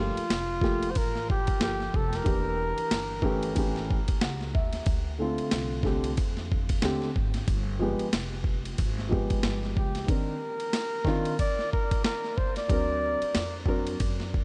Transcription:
0.00 0.14 G1 medium
0.00 0.21 F3 medium
0.00 0.22 A3 medium
0.00 0.23 A#3 medium
0.00 0.92 F4 medium
0.00 0.23 G4 medium
0.17 muted upright bass stroke soft
0.17 ride medium
0.30 0.92 F1 medium
0.30 snare medium
0.30 hi-hat pedal medium
0.30 ride medium
0.61 0.87 F3 medium
0.61 0.87 A3 medium
0.61 0.88 A#3 medium
0.61 0.88 G4 medium
0.61 kick medium
0.61 snare soft
0.83 ride medium
0.91 0.98 C5 medium
0.95 1.45 A1 medium
0.95 1.29 A#4 loud
0.95 kick medium
0.95 ride medium
1.15 snare soft
1.30 1.60 G4 medium
1.30 kick medium
1.47 muted upright bass stroke soft
1.47 kick medium
1.47 ride medium
1.60 1.92 G1 medium
1.60 2.25 F3 medium
1.60 2.23 A#3 medium
1.60 1.98 G4 loud
1.60 2.26 A4 medium
1.60 2.27 A#4 medium
1.60 snare loud
1.60 hi-hat pedal soft
1.60 ride medium
1.80 snare soft
1.94 2.25 F1 medium
1.94 2.17 A4 medium
1.94 kick medium
2.13 3.45 A#4 loud
2.13 snare soft
2.13 ride soft
2.24 2.75 E1 medium
2.24 3.17 E3 medium
2.24 3.18 A#3 medium
2.24 3.19 D4 medium
2.24 3.19 G4 medium
2.24 kick loud
2.24 ride medium
2.78 muted upright bass stroke soft
2.78 ride medium
2.91 3.53 G1 medium
2.91 snare loud
2.91 hi-hat pedal medium
2.91 ride medium
3.22 3.54 E3 medium
3.22 3.54 A3 medium
3.22 3.56 C#4 medium
3.22 3.56 G4 medium
3.22 kick medium
3.43 ride medium
3.55 4.06 A1 medium
3.55 3.96 E3 medium
3.55 3.97 A3 medium
3.55 3.97 C#4 medium
3.55 3.98 G4 medium
3.55 kick medium
3.55 ride medium
3.76 snare soft
3.91 kick medium
4.08 muted upright bass stroke soft
4.08 kick medium
4.08 ride medium
4.21 4.53 C#2 medium
4.21 4.52 F#5 medium
4.21 snare loud
4.21 hi-hat pedal soft
4.21 ride medium
4.41 snare soft
4.55 4.86 D#2 medium
4.55 4.85 E5 medium
4.55 kick medium
4.73 snare soft
4.73 ride medium
4.86 5.36 D2 medium
4.86 kick loud
4.86 ride medium
5.18 5.82 D3 medium
5.18 5.83 A3 medium
5.18 5.84 C4 medium
5.18 6.13 F4 medium
5.38 muted upright bass stroke soft
5.38 ride soft
5.51 6.14 C2 medium
5.51 snare medium
5.51 hi-hat pedal medium
5.51 ride medium
5.83 6.09 D3 medium
5.83 6.09 A3 medium
5.83 6.10 C4 medium
5.83 6.10 G4 medium
5.83 kick medium
5.83 snare soft
6.04 ride medium
6.17 6.80 F2 medium
6.17 kick medium
6.17 ride medium
6.37 snare soft
6.52 kick medium
6.69 kick medium
6.69 ride medium
6.82 7.14 D#2 medium
6.82 7.07 D3 medium
6.82 7.07 A3 medium
6.82 7.07 C4 medium
6.82 7.08 G4 medium
6.82 snare loud
6.82 hi-hat pedal soft
6.82 ride medium
7.02 snare soft
7.16 7.47 G#1 medium
7.16 kick medium
7.34 snare soft
7.34 ride medium
7.48 7.97 G1 medium
7.48 kick loud
7.48 ride medium
7.79 8.04 F3 medium
7.79 8.05 G#3 medium
7.79 8.05 B3 medium
7.79 8.06 G4 medium
7.99 muted upright bass stroke soft
7.99 ride medium
8.13 8.75 F1 medium
8.13 snare loud
8.13 hi-hat pedal medium
8.13 ride medium
8.44 kick medium
8.65 ride medium
8.78 9.28 G#1 medium
8.78 kick medium
8.78 ride medium
8.98 snare soft
9.09 10.02 F3 medium
9.09 10.03 G#3 medium
9.09 10.03 B3 medium
9.09 10.04 G4 medium
9.09 kick medium
9.30 kick medium
9.30 ride medium
9.43 9.74 G1 medium
9.43 snare loud
9.43 hi-hat pedal soft
9.43 ride medium
9.63 snare soft
9.77 10.08 C#2 medium
9.77 10.07 G4 medium
9.77 kick medium
9.95 snare soft
9.95 ride soft
10.07 10.32 D#3 medium
10.07 10.33 C4 medium
10.07 10.33 D4 medium
10.07 10.34 A#4 medium
10.07 kick loud
10.07 ride medium
10.11 11.36 A#4 medium
10.60 ride soft
10.73 snare medium
10.73 hi-hat pedal medium
10.73 ride medium
11.05 11.30 D#3 medium
11.05 11.31 C4 medium
11.05 11.31 D4 medium
11.05 11.31 F4 loud
11.05 kick medium
11.05 snare soft
11.25 ride medium
11.39 11.70 D5 loud
11.39 kick medium
11.39 ride medium
11.59 snare soft
11.72 12.02 A#4 medium
11.72 kick medium
11.91 kick medium
11.91 ride medium
12.04 12.38 A#4 medium
12.04 snare loud
12.04 hi-hat pedal soft
12.04 ride medium
12.24 snare soft
12.37 12.56 C5 medium
12.37 kick medium
12.56 13.83 D5 loud
12.56 snare soft
12.56 ride soft
12.68 13.19 D2 medium
12.68 13.17 F#3 medium
12.68 13.17 C4 medium
12.68 13.18 D4 medium
12.68 13.18 A#4 medium
12.68 kick loud
12.68 ride medium
13.21 muted upright bass stroke soft
13.21 ride medium
13.35 13.97 F2 medium
13.35 snare loud
13.35 hi-hat pedal medium
13.35 ride medium
13.66 13.91 F#3 medium
13.66 13.91 C4 medium
13.66 13.92 D4 medium
13.66 13.92 A#4 medium
13.66 kick medium
13.87 ride medium
14.00 14.44 F#2 medium
14.00 kick medium
14.00 ride medium
14.20 snare soft
14.34 kick medium

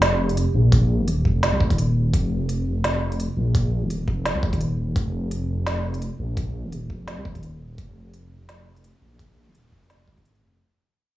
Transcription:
0.00 0.45 F1 medium
0.00 snare loud
0.00 closed hi-hat medium
0.29 closed hi-hat soft
0.37 closed hi-hat medium
0.54 1.01 A#1 medium
0.72 kick loud
0.72 closed hi-hat medium
1.00 1.24 D#1 medium
1.08 closed hi-hat medium
1.25 1.52 F1 medium
1.25 kick medium
1.43 snare loud
1.43 closed hi-hat medium
1.53 1.62 C2 medium
1.60 2.12 D#1 loud
1.60 kick loud
1.70 kick medium
1.70 closed hi-hat soft
1.78 closed hi-hat medium
2.14 2.65 F1 loud
2.14 kick loud
2.14 closed hi-hat medium
2.49 closed hi-hat medium
2.66 3.28 F1 medium
2.84 snare loud
2.84 closed hi-hat medium
3.12 closed hi-hat soft
3.20 closed hi-hat medium
3.37 3.84 A#1 medium
3.55 kick loud
3.55 closed hi-hat medium
3.82 4.07 D#1 medium
3.90 closed hi-hat medium
4.08 4.35 F1 medium
4.08 kick medium
4.25 snare loud
4.25 closed hi-hat medium
4.35 4.44 C2 medium
4.43 4.95 D#1 loud
4.43 kick loud
4.53 kick medium
4.53 closed hi-hat soft
4.61 closed hi-hat medium
4.96 5.48 F1 loud
4.96 kick loud
4.96 closed hi-hat medium
5.31 closed hi-hat medium
5.49 6.10 F1 medium
5.67 snare loud
5.67 closed hi-hat medium
5.94 closed hi-hat soft
6.02 closed hi-hat medium
6.19 6.66 A#1 medium
6.37 kick loud
6.37 closed hi-hat medium
6.65 6.89 D#1 medium
6.72 closed hi-hat medium
6.90 7.17 F1 medium
6.90 kick medium
7.08 snare loud
7.08 closed hi-hat medium
7.18 7.27 C2 medium
7.25 7.77 D#1 loud
7.25 kick loud
7.35 kick medium
7.35 closed hi-hat soft
7.43 closed hi-hat medium
7.78 8.30 F1 medium
7.78 kick loud
7.78 closed hi-hat medium
8.14 closed hi-hat medium
8.31 8.93 F1 medium
8.49 snare loud
8.49 closed hi-hat medium
8.76 closed hi-hat soft
8.84 closed hi-hat medium
9.02 9.48 A#1 medium
9.19 kick loud
9.19 closed hi-hat medium
9.47 9.71 D#1 medium
9.55 closed hi-hat medium
9.72 10.07 F1 medium
9.72 kick medium
9.90 snare loud
9.90 closed hi-hat medium
10.08 10.42 G#1 medium
10.08 kick medium
10.18 kick medium
10.18 closed hi-hat soft
10.25 closed hi-hat medium
10.35 closed hi-hat soft
10.43 10.59 F1 medium

